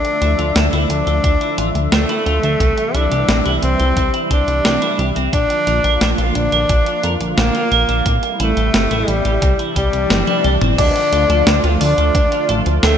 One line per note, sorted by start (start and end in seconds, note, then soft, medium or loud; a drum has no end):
0.00 2.58 D3 medium
0.00 2.57 F3 medium
0.00 2.56 A3 medium
0.00 0.76 D4 loud
0.00 5.29 E5 medium
0.05 closed hi-hat soft
0.22 0.35 D2 medium
0.22 0.32 E4 medium
0.22 closed hi-hat medium
0.39 0.52 D2 medium
0.39 0.49 F4 medium
0.39 closed hi-hat soft
0.56 0.69 D2 loud
0.56 0.66 D4 medium
0.56 snare loud
0.56 closed hi-hat medium
0.73 0.86 D2 medium
0.73 0.88 E4 medium
0.73 closed hi-hat soft
0.90 1.03 D2 medium
0.90 1.79 D4 medium
0.90 closed hi-hat medium
1.07 1.20 D2 medium
1.07 1.13 F4 medium
1.07 closed hi-hat soft
1.24 1.37 D2 loud
1.24 1.30 D4 medium
1.24 kick loud
1.24 closed hi-hat medium
1.41 1.56 E4 medium
1.41 closed hi-hat soft
1.58 1.71 A1 medium
1.58 1.68 F4 medium
1.58 closed hi-hat medium
1.75 1.88 D2 medium
1.75 closed hi-hat soft
1.92 2.05 D2 loud
1.92 2.96 A3 medium
1.92 2.07 D4 loud
1.92 snare loud
1.92 closed hi-hat medium
2.09 2.25 E4 medium
2.09 closed hi-hat soft
2.26 2.39 D2 loud
2.26 2.36 F4 loud
2.26 closed hi-hat soft
2.43 2.56 D2 medium
2.43 2.59 D4 loud
2.43 closed hi-hat soft
2.60 2.74 C2 loud
2.60 5.30 C3 medium
2.60 5.30 E3 medium
2.60 5.30 G3 medium
2.60 2.71 C4 medium
2.60 kick loud
2.60 closed hi-hat medium
2.78 closed hi-hat soft
2.94 3.08 C2 medium
2.94 3.54 D4 medium
2.94 3.05 E4 medium
2.94 closed hi-hat medium
3.11 3.25 C2 medium
3.11 3.22 G4 medium
3.11 closed hi-hat soft
3.28 3.42 A#1 loud
3.28 3.39 C4 medium
3.28 snare loud
3.28 closed hi-hat medium
3.46 3.59 C2 medium
3.46 3.61 E4 loud
3.46 closed hi-hat soft
3.63 3.76 C2 medium
3.63 4.22 C4 medium
3.63 closed hi-hat medium
3.80 3.93 C2 medium
3.80 3.86 G4 medium
3.80 closed hi-hat soft
3.97 4.10 C2 loud
3.97 4.03 C4 medium
3.97 kick loud
3.97 closed hi-hat medium
4.14 4.29 E4 medium
4.14 closed hi-hat soft
4.31 4.44 C2 medium
4.31 5.19 D4 loud
4.31 4.41 G4 medium
4.31 kick medium
4.31 closed hi-hat medium
4.48 4.61 C2 medium
4.48 closed hi-hat soft
4.65 4.78 C2 loud
4.65 4.80 C4 loud
4.65 snare loud
4.65 closed hi-hat medium
4.82 4.97 E4 loud
4.82 closed hi-hat soft
4.99 5.12 C2 loud
4.99 5.09 G4 loud
4.99 closed hi-hat soft
5.16 5.29 C2 medium
5.16 5.31 C4 loud
5.16 closed hi-hat soft
5.33 5.46 A#1 loud
5.33 8.03 D3 medium
5.33 8.03 F3 medium
5.33 8.03 A#3 medium
5.33 5.43 D4 medium
5.33 6.22 D4 loud
5.33 8.03 F4 medium
5.33 kick loud
5.33 closed hi-hat medium
5.50 closed hi-hat soft
5.67 5.80 A#1 medium
5.67 5.77 F4 medium
5.67 closed hi-hat medium
5.84 5.97 A#1 medium
5.84 5.94 A#4 medium
5.84 closed hi-hat soft
6.01 6.14 A#1 loud
6.01 6.12 D4 medium
6.01 snare loud
6.01 closed hi-hat medium
6.18 6.32 A#1 medium
6.18 6.34 F4 medium
6.18 closed hi-hat soft
6.35 6.49 A#1 medium
6.35 7.24 D4 medium
6.35 closed hi-hat medium
6.52 6.66 A#1 medium
6.52 6.59 A#4 medium
6.52 closed hi-hat soft
6.69 6.83 A#1 loud
6.69 6.76 D4 medium
6.69 kick loud
6.69 closed hi-hat medium
6.86 7.02 F4 medium
6.86 closed hi-hat soft
7.03 7.17 F2 medium
7.03 7.14 A#4 medium
7.03 closed hi-hat medium
7.21 7.34 A#1 medium
7.21 closed hi-hat soft
7.37 7.51 A#1 loud
7.37 8.26 A#3 loud
7.37 7.53 D4 loud
7.37 snare loud
7.37 closed hi-hat medium
7.55 7.70 F4 medium
7.55 closed hi-hat soft
7.72 7.85 A#1 medium
7.72 7.82 A#4 loud
7.72 closed hi-hat soft
7.89 8.02 A#1 medium
7.89 8.04 D4 loud
7.89 closed hi-hat soft
8.06 8.19 A2 loud
8.06 10.76 C3 medium
8.06 9.41 G3 medium
8.06 9.41 A3 medium
8.06 8.16 C4 medium
8.06 10.76 E4 medium
8.06 kick loud
8.06 closed hi-hat medium
8.23 closed hi-hat soft
8.40 8.53 A1 loud
8.40 9.10 A3 medium
8.40 8.50 E4 medium
8.40 closed hi-hat medium
8.57 8.70 A1 medium
8.57 8.67 G4 medium
8.57 closed hi-hat soft
8.74 8.87 G1 loud
8.74 8.84 C4 medium
8.74 snare loud
8.74 closed hi-hat medium
8.91 9.04 A1 medium
8.91 9.06 E4 loud
8.91 closed hi-hat soft
9.08 9.21 A1 medium
9.08 9.68 G3 medium
9.08 closed hi-hat medium
9.25 9.38 A1 medium
9.25 9.31 G4 medium
9.25 closed hi-hat soft
9.42 9.55 C2 loud
9.42 10.77 E3 medium
9.42 10.77 G3 medium
9.42 9.48 C4 medium
9.42 kick loud
9.42 closed hi-hat medium
9.42 swell medium
9.59 9.74 E4 medium
9.59 closed hi-hat soft
9.76 9.89 C2 medium
9.76 10.65 G3 loud
9.76 9.86 G4 medium
9.76 kick medium
9.76 closed hi-hat medium
9.93 10.07 C2 medium
9.93 closed hi-hat soft
10.10 10.24 G1 loud
10.10 10.26 C4 loud
10.10 snare loud
10.10 closed hi-hat medium
10.10 high tom medium
10.27 10.43 E4 loud
10.27 closed hi-hat soft
10.27 high tom medium
10.44 10.58 C2 loud
10.44 10.55 G4 loud
10.44 closed hi-hat soft
10.61 10.75 G1 medium
10.61 10.77 C4 loud
10.61 closed hi-hat soft
10.61 mid tom medium
10.78 10.92 D2 loud
10.78 12.98 D3 medium
10.78 12.98 F3 medium
10.78 12.98 A3 medium
10.78 11.67 D4 loud
10.78 10.89 D4 medium
10.78 12.98 F4 medium
10.78 11.67 D5 loud
10.78 kick loud
10.78 closed hi-hat loud
10.78 crash loud
10.96 closed hi-hat soft
11.12 11.26 D2 loud
11.12 11.23 F4 medium
11.12 closed hi-hat medium
11.29 11.43 D2 medium
11.29 11.40 A4 medium
11.29 closed hi-hat soft
11.47 11.60 D2 loud
11.47 11.57 D4 medium
11.47 snare loud
11.47 closed hi-hat loud
11.64 11.77 D2 medium
11.64 11.79 F4 loud
11.64 closed hi-hat soft
11.80 11.94 D2 medium
11.80 12.69 D4 loud
11.80 12.69 D5 loud
11.80 open hi-hat medium
11.98 12.11 D2 medium
11.98 12.04 A4 medium
11.98 closed hi-hat soft
12.15 12.28 D2 loud
12.15 12.21 D4 medium
12.15 kick loud
12.15 closed hi-hat loud
12.32 12.47 F4 medium
12.32 closed hi-hat soft
12.49 12.62 A1 medium
12.49 12.59 A4 loud
12.49 closed hi-hat medium
12.66 12.79 D2 medium
12.66 closed hi-hat soft
12.83 12.96 D2 loud
12.83 12.98 A3 medium
12.83 12.98 D4 loud
12.83 12.98 A4 loud
12.83 snare loud
12.83 closed hi-hat medium